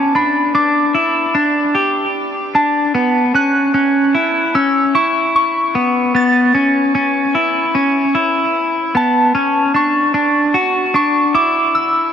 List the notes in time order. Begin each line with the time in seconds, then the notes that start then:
Already playing: C#4 A5
0.15 D4 B5
0.55 D4 D6
0.95 E4
1.35 D4
1.75 G4
2.55 D4 A5
2.95 B3
3.35 C#4 F#6
3.74 C#4
4.15 E4
4.55 C#4 E6
4.95 E4 C#6
5.36 C#6
5.75 B3
6.15 B3 A6
6.55 C#4
6.95 C#4
7.35 E4
7.75 C#4
8.15 E4
8.95 B3 A5
9.35 C#4
9.74 D4 C#6
10.14 D4
10.54 F#4
10.94 D4 C#6
11.35 E4 D6
11.75 E6